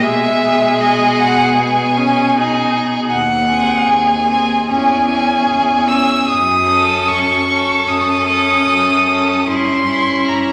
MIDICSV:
0, 0, Header, 1, 5, 480
1, 0, Start_track
1, 0, Tempo, 781250
1, 15, Time_signature, 4, 2, 24, 8
1, 1454, Tempo, 757576
1, 2414, Tempo, 801068
1, 6395, End_track
2, 0, Start_track
2, 0, Title_t, "Violin"
2, 0, Program_c, 0, 40
2, 19, Note_on_c, 0, 76, 86
2, 495, Note_on_c, 0, 75, 74
2, 504, Note_off_c, 0, 76, 0
2, 734, Note_on_c, 0, 78, 85
2, 743, Note_off_c, 0, 75, 0
2, 967, Note_on_c, 0, 80, 71
2, 977, Note_off_c, 0, 78, 0
2, 1692, Note_off_c, 0, 80, 0
2, 1920, Note_on_c, 0, 78, 78
2, 2411, Note_on_c, 0, 80, 78
2, 2420, Note_off_c, 0, 78, 0
2, 2891, Note_off_c, 0, 80, 0
2, 2894, Note_on_c, 0, 80, 82
2, 3610, Note_on_c, 0, 88, 76
2, 3619, Note_off_c, 0, 80, 0
2, 3850, Note_off_c, 0, 88, 0
2, 3853, Note_on_c, 0, 87, 77
2, 4331, Note_on_c, 0, 85, 73
2, 4340, Note_off_c, 0, 87, 0
2, 4811, Note_on_c, 0, 87, 78
2, 4820, Note_off_c, 0, 85, 0
2, 5763, Note_on_c, 0, 84, 77
2, 5772, Note_off_c, 0, 87, 0
2, 6248, Note_on_c, 0, 82, 60
2, 6257, Note_off_c, 0, 84, 0
2, 6395, Note_off_c, 0, 82, 0
2, 6395, End_track
3, 0, Start_track
3, 0, Title_t, "Violin"
3, 0, Program_c, 1, 40
3, 14, Note_on_c, 1, 68, 58
3, 1454, Note_off_c, 1, 68, 0
3, 1461, Note_on_c, 1, 68, 57
3, 1919, Note_off_c, 1, 68, 0
3, 2161, Note_on_c, 1, 68, 52
3, 2645, Note_off_c, 1, 68, 0
3, 2662, Note_on_c, 1, 68, 48
3, 2894, Note_off_c, 1, 68, 0
3, 2898, Note_on_c, 1, 68, 48
3, 3135, Note_off_c, 1, 68, 0
3, 3146, Note_on_c, 1, 68, 50
3, 3609, Note_off_c, 1, 68, 0
3, 3614, Note_on_c, 1, 68, 51
3, 3851, Note_off_c, 1, 68, 0
3, 4095, Note_on_c, 1, 69, 46
3, 4563, Note_off_c, 1, 69, 0
3, 4572, Note_on_c, 1, 69, 43
3, 5043, Note_off_c, 1, 69, 0
3, 5050, Note_on_c, 1, 69, 46
3, 5519, Note_off_c, 1, 69, 0
3, 5530, Note_on_c, 1, 69, 44
3, 5762, Note_off_c, 1, 69, 0
3, 5767, Note_on_c, 1, 64, 45
3, 6002, Note_off_c, 1, 64, 0
3, 6006, Note_on_c, 1, 64, 43
3, 6395, Note_off_c, 1, 64, 0
3, 6395, End_track
4, 0, Start_track
4, 0, Title_t, "Viola"
4, 0, Program_c, 2, 41
4, 10, Note_on_c, 2, 56, 59
4, 947, Note_off_c, 2, 56, 0
4, 965, Note_on_c, 2, 59, 60
4, 1211, Note_on_c, 2, 61, 61
4, 1221, Note_off_c, 2, 59, 0
4, 1453, Note_off_c, 2, 61, 0
4, 1458, Note_on_c, 2, 63, 53
4, 1917, Note_off_c, 2, 63, 0
4, 2166, Note_on_c, 2, 60, 54
4, 2648, Note_off_c, 2, 60, 0
4, 2655, Note_on_c, 2, 60, 50
4, 2895, Note_off_c, 2, 60, 0
4, 2899, Note_on_c, 2, 61, 47
4, 3135, Note_off_c, 2, 61, 0
4, 3138, Note_on_c, 2, 61, 52
4, 3605, Note_off_c, 2, 61, 0
4, 3616, Note_on_c, 2, 61, 50
4, 3852, Note_off_c, 2, 61, 0
4, 4096, Note_on_c, 2, 61, 53
4, 4564, Note_off_c, 2, 61, 0
4, 4575, Note_on_c, 2, 61, 50
4, 5045, Note_off_c, 2, 61, 0
4, 5054, Note_on_c, 2, 61, 52
4, 5521, Note_off_c, 2, 61, 0
4, 5536, Note_on_c, 2, 61, 46
4, 5764, Note_off_c, 2, 61, 0
4, 5767, Note_on_c, 2, 61, 41
4, 6002, Note_off_c, 2, 61, 0
4, 6012, Note_on_c, 2, 61, 48
4, 6395, Note_off_c, 2, 61, 0
4, 6395, End_track
5, 0, Start_track
5, 0, Title_t, "Cello"
5, 0, Program_c, 3, 42
5, 14, Note_on_c, 3, 47, 66
5, 1924, Note_off_c, 3, 47, 0
5, 1928, Note_on_c, 3, 39, 68
5, 2356, Note_off_c, 3, 39, 0
5, 2414, Note_on_c, 3, 39, 61
5, 2843, Note_off_c, 3, 39, 0
5, 2900, Note_on_c, 3, 40, 63
5, 3323, Note_off_c, 3, 40, 0
5, 3378, Note_on_c, 3, 40, 64
5, 3800, Note_off_c, 3, 40, 0
5, 3859, Note_on_c, 3, 42, 66
5, 4282, Note_off_c, 3, 42, 0
5, 4336, Note_on_c, 3, 42, 54
5, 4756, Note_off_c, 3, 42, 0
5, 4808, Note_on_c, 3, 42, 59
5, 5235, Note_off_c, 3, 42, 0
5, 5287, Note_on_c, 3, 42, 64
5, 5708, Note_off_c, 3, 42, 0
5, 5760, Note_on_c, 3, 43, 60
5, 6189, Note_off_c, 3, 43, 0
5, 6247, Note_on_c, 3, 43, 50
5, 6395, Note_off_c, 3, 43, 0
5, 6395, End_track
0, 0, End_of_file